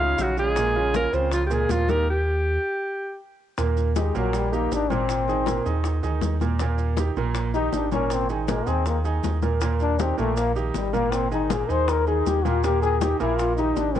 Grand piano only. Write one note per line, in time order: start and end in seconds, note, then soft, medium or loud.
0.00 0.30 C#3 medium
0.00 0.31 C#4 medium
0.00 0.31 D#4 medium
0.37 0.53 C#3 medium
0.37 0.53 C#4 medium
0.37 0.53 F4 medium
0.57 0.72 A#2 medium
0.57 0.72 A#3 medium
0.57 0.72 A#4 medium
0.76 1.06 C#3 medium
0.76 1.07 C#4 medium
0.76 1.07 F4 medium
1.13 1.44 C#3 medium
1.13 1.44 C#4 medium
1.13 1.44 F4 medium
1.50 1.81 A#2 medium
1.50 1.82 A#3 medium
1.50 1.82 A#4 medium
1.89 2.04 D#3 medium
1.89 2.04 D#4 medium
1.89 2.04 G4 medium
3.58 3.89 A#2 medium
3.58 3.89 A#3 medium
3.58 3.89 A#4 medium
3.96 4.12 D#3 medium
3.96 4.12 D#4 medium
3.96 4.12 G4 medium
4.15 4.46 A#2 medium
4.15 4.46 A#3 medium
4.15 4.46 A#4 medium
4.52 4.83 D#3 medium
4.52 4.83 D#4 medium
4.52 4.83 G4 medium
4.90 5.21 A#2 medium
4.90 5.21 A#3 medium
4.90 5.21 A#4 medium
5.28 5.44 D#3 medium
5.28 5.44 D#4 medium
5.28 5.44 G#4 medium
5.47 5.62 A#2 medium
5.47 5.62 A#3 medium
5.47 5.62 A#4 medium
5.66 5.97 D#3 medium
5.66 5.97 D#4 medium
5.66 5.97 G#4 medium
6.03 6.34 D#3 medium
6.03 6.34 D#4 medium
6.03 6.34 G#4 medium
6.41 6.57 A#2 medium
6.41 6.57 A#3 medium
6.41 6.57 A#4 medium
6.61 6.92 A#2 medium
6.61 6.92 A#3 medium
6.61 6.92 A#4 medium
6.99 7.14 D#3 medium
6.99 7.14 D#4 medium
6.99 7.14 G4 medium
7.17 7.48 A#2 medium
7.17 7.48 A#3 medium
7.17 7.48 A#4 medium
7.55 7.85 D#3 medium
7.55 7.86 D#4 medium
7.55 7.86 G4 medium
7.92 8.23 A#2 medium
7.92 8.23 A#3 medium
7.92 8.23 A#4 medium
8.29 8.45 D#3 medium
8.29 8.45 D#4 medium
8.29 8.45 G#4 medium
8.48 8.64 A#2 medium
8.48 8.64 A#3 medium
8.48 8.64 A#4 medium
8.66 8.98 D#3 medium
8.66 8.98 D#4 medium
8.66 8.98 G#4 medium
9.05 9.36 D#3 medium
9.05 9.36 D#4 medium
9.05 9.36 G#4 medium
9.43 9.58 A#2 medium
9.43 9.58 A#3 medium
9.43 9.59 A#4 medium
9.62 9.93 A#2 medium
9.62 9.93 A#3 medium
9.62 9.93 A#4 medium
10.00 10.15 D#3 medium
10.00 10.15 D#4 medium
10.00 10.15 G4 medium
10.18 10.49 A#2 medium
10.18 10.49 A#3 medium
10.18 10.49 A#4 medium
10.56 10.87 D#3 medium
10.56 10.87 D#4 medium
10.56 10.87 G4 medium
10.93 11.24 A#2 medium
10.93 11.25 A#3 medium
10.93 11.25 A#4 medium
11.31 11.47 D#3 medium
11.31 11.47 D#4 medium
11.31 11.47 G#4 medium
11.50 11.65 A#2 medium
11.50 11.66 A#3 medium
11.50 11.66 A#4 medium
11.68 12.00 D#3 medium
11.68 12.00 D#4 medium
11.68 12.00 G#4 medium
12.07 12.38 D#3 medium
12.07 12.38 D#4 medium
12.07 12.38 G#4 medium
12.45 12.60 A#2 medium
12.45 12.61 A#3 medium
12.45 12.61 A#4 medium
12.64 12.95 A#2 medium
12.64 12.95 A#3 medium
12.64 12.95 A#4 medium
13.02 13.17 D#3 medium
13.02 13.17 D#4 medium
13.02 13.17 G4 medium
13.20 13.51 A#2 medium
13.20 13.51 A#3 medium
13.20 13.51 A#4 medium
13.58 13.89 D#3 medium
13.58 13.89 D#4 medium
13.58 13.89 G4 medium
13.95 14.00 A#2 medium
13.95 14.00 A#3 medium
13.95 14.00 A#4 medium